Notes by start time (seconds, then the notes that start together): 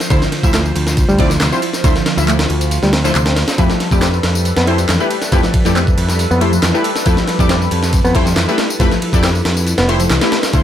Already playing: F3 C5
0.00 snare, tambourine
0.10 D2 D3 F3 E4 F4 C5, kick, ride, tambourine
0.22 snare, tambourine
0.32 snare, ride
0.43 D2 F3 E4 E5, kick, tambourine
0.54 A3, snare, clap, ride, tambourine
0.66 tambourine
0.75 D2, ride
0.87 snare, tambourine
0.97 kick, ride, tambourine
1.09 D2 G3, tambourine
1.19 F3 C4 E4 D5, kick, ride
1.30 D3, snare, tambourine
1.40 D2 C3, snare, clap, ride, tambourine
1.52 F3 C4 E4 C5, tambourine
1.62 ride
1.73 snare, tambourine
1.84 D2 D3 F3 E4 C5, kick, ride, tambourine
1.96 snare, tambourine
2.06 snare, ride
2.17 D2 F3 E4 E5, tambourine
2.28 A3, clap, ride, tambourine
2.39 snare, ride, tambourine
2.50 D2, ride
2.61 ride, tambourine
2.71 ride, tambourine
2.82 D2 G3, snare, tambourine
2.93 C4, snare, ride
3.04 D3 F3 E4 C5, snare, tambourine
3.15 D2 C3, clap, ride, tambourine
3.26 C4, snare, ride, tambourine
3.36 snare, ride
3.48 snare, ride, tambourine
3.58 F2 F3 G3 A3 E4 G4 A4 B4, kick, ride, tambourine
3.70 snare, tambourine
3.80 snare, ride
3.91 F2 A3 E4 G4 D5, kick, tambourine
4.01 C4, snare, clap, ride, tambourine
4.14 tambourine
4.23 F2, snare, ride
4.35 tambourine
4.45 ride, tambourine
4.57 F2 B3, snare, ride, tambourine
4.67 A3 E4 G4 C5, ride
4.78 F3, ride, tambourine
4.89 F2 E3, snare, clap, ride, tambourine
5.00 A3 E4 G4 B4, tambourine
5.11 ride
5.22 snare, tambourine
5.32 F2 F3 A3 E4 G4 B4, kick, ride, tambourine
5.43 snare, tambourine
5.54 kick, ride
5.65 F2 A3 E4 G4 D5, snare, tambourine
5.76 C4, snare, clap, ride, tambourine
5.87 kick, tambourine
5.97 F2, ride
6.09 snare, tambourine
6.19 ride, tambourine
6.31 F2 B3, tambourine
6.41 A3 E4 G4 C5, ride
6.53 F3, tambourine
6.63 F2 E3, snare, clap, ride, tambourine
6.74 A3 E4 G4 B4, tambourine
6.84 ride
6.96 snare, tambourine
7.06 F2 F3 A3 E4 G4 B4, kick, ride, tambourine
7.17 snare, tambourine
7.28 snare, ride
7.39 F2 A3 E4 G4 D5, kick, tambourine
7.49 C4, snare, clap, ride, tambourine
7.62 tambourine
7.71 F2, ride
7.83 snare, tambourine
7.93 kick, ride, tambourine
8.04 F2 B3, tambourine
8.15 A3 E4 G4 C5, kick, ride
8.26 F3, snare, tambourine
8.36 F2 E3, snare, clap, ride, tambourine
8.48 A3 E4 G4 B4, tambourine
8.58 snare, ride
8.70 tambourine
8.80 F2 F3 A3 E4 G4 B4, kick, ride, tambourine
8.91 snare, tambourine
9.02 ride
9.13 F2 A3 E4 G4 D5, kick, tambourine
9.23 C4, snare, clap, ride, tambourine
9.35 tambourine
9.45 F2, snare, ride
9.57 tambourine
9.67 ride, tambourine
9.78 F1 B3, snare, ride, tambourine
9.88 A3 E4 G4 C5, ride
10.00 F3, ride, tambourine
10.10 C2 E3, snare, clap, ride, tambourine
10.21 A3 E4 G4 B4, snare, ride, tambourine
10.32 snare, ride
10.43 snare, ride, tambourine
10.53 D2 D3 F3 E4 C5, kick, ride, tambourine